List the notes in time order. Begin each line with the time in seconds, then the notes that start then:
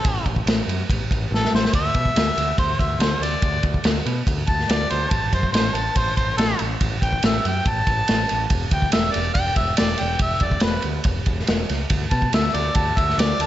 Already playing: A4
0.05 A1, kick, ride
0.26 A1, kick, ride
0.36 kick
0.46 A1, snare, ride
0.68 F#2, ride
0.90 A1, kick, ride
1.11 A1, kick, ride
1.31 A1, snare
1.35 A4
1.45 snare
1.53 A1 C5, snare
1.65 snare
1.73 D2 E5, kick, ride
1.94 B2, kick, ride
2.05 kick
2.16 D2, snare, ride
2.37 D2, ride
2.58 D2 C5, kick, ride
2.79 D2 E5, kick, ride
2.99 D2 C5, snare, ride
3.20 D2 D5, ride
3.24 snare
3.42 D2, kick, ride
3.63 D2, kick, ride
3.74 kick
3.84 D2, snare, ride
4.06 B2, ride
4.27 D2, kick, ride
4.47 D2 A5, kick, ride
4.59 snare
4.69 D2 D5, snare, ride
4.90 D2 C5, ride
5.11 A1 A5, kick, ride
5.33 F#2 C5, kick, ride
5.43 kick
5.52 A1 C5, snare, ride
5.73 A1 A5, ride
5.96 A1 C5, kick, ride
6.17 A1 C5, kick, ride
6.37 A1 A4, snare, ride
6.59 A1, ride
6.81 A1, kick, ride
7.02 A1 G5, kick, ride
7.13 kick
7.23 A1 E5, snare, ride
7.45 F#2 G5, ride
7.66 A1 A5, kick, ride
7.87 A1, kick, ride
8.08 A1, snare, ride
8.29 A1, ride
8.50 E1, kick, ride
8.71 D2 G5, kick, ride
8.82 kick
8.92 E1 E5, snare, ride
9.12 E1 D5, ride
9.34 E1 G5, kick, ride
9.56 E1 E5, kick, ride
9.77 E1 D5, snare, ride
9.97 E1 G5, ride
10.19 E1 E5, kick, ride
10.40 E1 D5, kick, ride
10.51 kick
10.60 E1 B4, snare, ride
10.82 D2, ride
11.04 E1, kick, ride
11.26 E1, kick, ride
11.39 snare
11.47 E1, snare, ride
11.69 C#2, snare, ride
11.90 D2, kick, ride
12.11 B2 A5, kick, ride
12.22 kick
12.33 D2 E5, snare, ride
12.54 D2 D5, ride
12.75 D2 A5, kick, ride
12.97 D2 E5, kick, ride
13.10 snare
13.17 D2 D5, snare, ride
13.39 D2 A5, ride